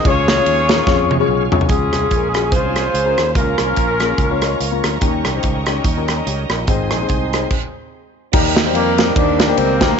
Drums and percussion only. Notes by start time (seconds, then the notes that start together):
0.05 kick, ride
0.28 snare, ride
0.46 ride
0.69 snare, ride
0.87 kick, snare
1.11 high tom
1.52 floor tom
1.61 floor tom
1.69 kick, closed hi-hat
1.93 cross-stick, closed hi-hat
2.11 kick, closed hi-hat
2.34 cross-stick, closed hi-hat
2.52 kick, closed hi-hat
2.76 cross-stick, closed hi-hat
2.95 closed hi-hat
3.18 cross-stick, closed hi-hat
3.35 kick, closed hi-hat
3.58 cross-stick, closed hi-hat
3.76 kick, closed hi-hat
4.00 cross-stick, closed hi-hat
4.18 kick, closed hi-hat
4.42 cross-stick, closed hi-hat
4.61 closed hi-hat
4.84 cross-stick, closed hi-hat
5.01 kick, closed hi-hat
5.25 cross-stick, closed hi-hat
5.43 kick, closed hi-hat
5.66 cross-stick, closed hi-hat
5.84 kick, closed hi-hat
6.08 cross-stick, closed hi-hat
6.27 closed hi-hat
6.50 cross-stick, closed hi-hat
6.67 kick, closed hi-hat
6.91 cross-stick, closed hi-hat
7.09 kick, closed hi-hat
7.33 cross-stick, closed hi-hat
7.50 kick, crash
8.33 kick, crash
8.57 snare, ride
8.75 ride
8.98 snare, ride
9.16 kick, ride
9.39 snare, ride
9.58 ride
9.81 kick, snare, ride